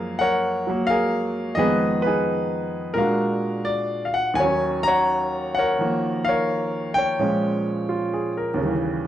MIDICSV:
0, 0, Header, 1, 2, 480
1, 0, Start_track
1, 0, Tempo, 697674
1, 1086, Time_signature, 4, 2, 24, 8
1, 6242, End_track
2, 0, Start_track
2, 0, Title_t, "Grand piano"
2, 0, Program_c, 0, 0
2, 0, Note_on_c, 0, 42, 57
2, 0, Note_on_c, 0, 53, 49
2, 0, Note_on_c, 0, 56, 48
2, 0, Note_on_c, 0, 58, 59
2, 0, Note_on_c, 0, 68, 58
2, 0, Note_on_c, 0, 70, 60
2, 0, Note_on_c, 0, 77, 81
2, 129, Note_on_c, 0, 78, 84
2, 134, Note_off_c, 0, 70, 0
2, 144, Note_on_c, 0, 70, 61
2, 146, Note_on_c, 0, 73, 61
2, 150, Note_off_c, 0, 77, 0
2, 460, Note_on_c, 0, 54, 43
2, 469, Note_off_c, 0, 58, 0
2, 479, Note_on_c, 0, 58, 48
2, 580, Note_off_c, 0, 78, 0
2, 591, Note_off_c, 0, 68, 0
2, 596, Note_on_c, 0, 77, 87
2, 606, Note_off_c, 0, 70, 0
2, 617, Note_on_c, 0, 70, 60
2, 620, Note_on_c, 0, 68, 58
2, 1061, Note_off_c, 0, 70, 0
2, 1062, Note_off_c, 0, 73, 0
2, 1063, Note_off_c, 0, 68, 0
2, 1066, Note_on_c, 0, 75, 89
2, 1075, Note_off_c, 0, 56, 0
2, 1081, Note_on_c, 0, 41, 44
2, 1082, Note_on_c, 0, 51, 42
2, 1085, Note_on_c, 0, 56, 40
2, 1086, Note_off_c, 0, 53, 0
2, 1086, Note_off_c, 0, 54, 0
2, 1087, Note_off_c, 0, 42, 0
2, 1092, Note_off_c, 0, 77, 0
2, 1092, Note_on_c, 0, 59, 51
2, 1092, Note_on_c, 0, 68, 60
2, 1094, Note_on_c, 0, 71, 63
2, 1096, Note_off_c, 0, 58, 0
2, 1376, Note_off_c, 0, 75, 0
2, 1381, Note_off_c, 0, 71, 0
2, 1391, Note_on_c, 0, 71, 74
2, 1410, Note_off_c, 0, 68, 0
2, 1421, Note_on_c, 0, 63, 55
2, 1421, Note_on_c, 0, 68, 54
2, 2012, Note_off_c, 0, 71, 0
2, 2020, Note_on_c, 0, 70, 78
2, 2027, Note_off_c, 0, 63, 0
2, 2027, Note_off_c, 0, 68, 0
2, 2028, Note_on_c, 0, 46, 43
2, 2030, Note_off_c, 0, 56, 0
2, 2041, Note_on_c, 0, 56, 41
2, 2046, Note_off_c, 0, 41, 0
2, 2047, Note_off_c, 0, 51, 0
2, 2049, Note_on_c, 0, 77, 57
2, 2051, Note_off_c, 0, 59, 0
2, 2051, Note_on_c, 0, 62, 39
2, 2066, Note_on_c, 0, 66, 49
2, 2510, Note_on_c, 0, 74, 78
2, 2538, Note_off_c, 0, 70, 0
2, 2776, Note_off_c, 0, 77, 0
2, 2787, Note_on_c, 0, 77, 57
2, 2799, Note_off_c, 0, 74, 0
2, 2847, Note_on_c, 0, 78, 76
2, 2861, Note_off_c, 0, 77, 0
2, 2984, Note_on_c, 0, 39, 53
2, 2996, Note_on_c, 0, 80, 99
2, 3007, Note_on_c, 0, 51, 45
2, 3017, Note_off_c, 0, 46, 0
2, 3021, Note_off_c, 0, 78, 0
2, 3023, Note_off_c, 0, 56, 0
2, 3026, Note_on_c, 0, 73, 70
2, 3028, Note_off_c, 0, 62, 0
2, 3035, Note_off_c, 0, 66, 0
2, 3036, Note_on_c, 0, 54, 46
2, 3059, Note_on_c, 0, 61, 53
2, 3325, Note_on_c, 0, 82, 103
2, 3345, Note_off_c, 0, 73, 0
2, 3350, Note_off_c, 0, 80, 0
2, 3355, Note_on_c, 0, 73, 64
2, 3359, Note_on_c, 0, 78, 64
2, 3795, Note_off_c, 0, 82, 0
2, 3805, Note_off_c, 0, 78, 0
2, 3815, Note_on_c, 0, 78, 83
2, 3832, Note_off_c, 0, 73, 0
2, 3842, Note_on_c, 0, 73, 58
2, 3844, Note_on_c, 0, 70, 63
2, 3972, Note_off_c, 0, 51, 0
2, 3983, Note_on_c, 0, 51, 38
2, 3989, Note_on_c, 0, 53, 37
2, 3997, Note_on_c, 0, 58, 46
2, 4297, Note_on_c, 0, 77, 82
2, 4315, Note_off_c, 0, 70, 0
2, 4316, Note_off_c, 0, 73, 0
2, 4322, Note_off_c, 0, 78, 0
2, 4325, Note_on_c, 0, 70, 60
2, 4326, Note_on_c, 0, 73, 60
2, 4759, Note_off_c, 0, 77, 0
2, 4776, Note_on_c, 0, 79, 90
2, 4794, Note_off_c, 0, 73, 0
2, 4804, Note_on_c, 0, 73, 56
2, 4928, Note_off_c, 0, 70, 0
2, 4930, Note_off_c, 0, 39, 0
2, 4940, Note_off_c, 0, 53, 0
2, 4947, Note_off_c, 0, 51, 0
2, 4948, Note_off_c, 0, 61, 0
2, 4948, Note_on_c, 0, 46, 49
2, 4950, Note_on_c, 0, 53, 44
2, 4954, Note_off_c, 0, 58, 0
2, 4954, Note_on_c, 0, 56, 46
2, 4956, Note_off_c, 0, 54, 0
2, 4958, Note_on_c, 0, 61, 52
2, 5428, Note_on_c, 0, 65, 42
2, 5597, Note_on_c, 0, 68, 46
2, 5727, Note_off_c, 0, 65, 0
2, 5761, Note_on_c, 0, 70, 47
2, 5839, Note_off_c, 0, 68, 0
2, 5875, Note_on_c, 0, 39, 51
2, 5899, Note_on_c, 0, 49, 46
2, 5901, Note_off_c, 0, 46, 0
2, 5902, Note_off_c, 0, 53, 0
2, 5904, Note_off_c, 0, 56, 0
2, 5906, Note_off_c, 0, 61, 0
2, 5929, Note_on_c, 0, 55, 44
2, 5953, Note_on_c, 0, 52, 55
2, 6000, Note_off_c, 0, 70, 0
2, 6186, Note_off_c, 0, 79, 0
2, 6200, Note_off_c, 0, 73, 0
2, 6242, Note_off_c, 0, 39, 0
2, 6242, Note_off_c, 0, 49, 0
2, 6242, Note_off_c, 0, 52, 0
2, 6242, Note_off_c, 0, 55, 0
2, 6242, End_track
0, 0, End_of_file